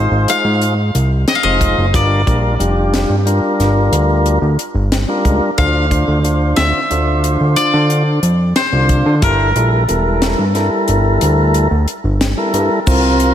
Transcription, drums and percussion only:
0.28 closed hi-hat medium
0.62 closed hi-hat soft
0.95 closed hi-hat medium
1.28 snare loud
1.28 closed hi-hat medium
1.61 kick medium
1.61 closed hi-hat medium
1.94 kick loud
1.94 closed hi-hat medium
2.27 kick medium
2.27 closed hi-hat medium
2.60 closed hi-hat medium
2.94 snare loud
2.94 closed hi-hat medium
3.27 closed hi-hat soft
3.60 snare soft
3.60 closed hi-hat medium
3.93 closed hi-hat medium
4.26 closed hi-hat soft
4.59 closed hi-hat soft
4.92 snare loud
4.92 closed hi-hat medium
5.25 kick medium
5.25 closed hi-hat medium
5.58 kick medium
5.58 closed hi-hat medium
5.91 kick medium
5.91 closed hi-hat medium
6.25 closed hi-hat medium
6.57 snare loud
6.57 closed hi-hat medium
6.91 closed hi-hat medium
7.24 closed hi-hat medium
7.57 closed hi-hat medium
7.90 closed hi-hat soft
8.23 closed hi-hat medium
8.56 snare loud
8.56 closed hi-hat medium
8.89 kick medium
8.89 closed hi-hat medium
9.22 kick loud
9.22 closed hi-hat medium
9.56 closed hi-hat soft
9.89 closed hi-hat medium
10.22 snare loud
10.22 closed hi-hat medium
10.55 snare soft
10.55 closed hi-hat soft
10.88 closed hi-hat medium
11.21 closed hi-hat medium
11.54 closed hi-hat soft
11.88 closed hi-hat soft
12.21 snare loud
12.21 closed hi-hat medium
12.54 closed hi-hat medium
12.87 kick loud
12.87 crash loud
12.87 shaker medium
13.20 closed hi-hat medium

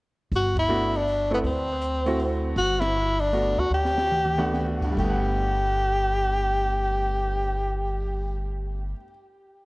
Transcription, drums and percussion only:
0.31 kick soft
0.31 open hi-hat soft
0.56 kick medium
0.56 ride medium
0.94 open hi-hat soft
1.08 open hi-hat soft
1.44 kick soft
1.44 open hi-hat soft
1.82 closed hi-hat medium
2.06 open hi-hat soft
2.20 open hi-hat soft
2.56 kick soft
2.56 open hi-hat soft
2.81 snare medium
2.81 ride medium
3.20 open hi-hat soft
3.33 open hi-hat soft
3.85 snare soft
3.98 snare medium
4.12 mid tom medium
4.25 mid tom medium
4.39 mid tom medium
4.54 snare soft
4.82 kick medium
4.82 crash medium
4.97 kick medium
4.97 crash medium
5.27 cymbal swell soft

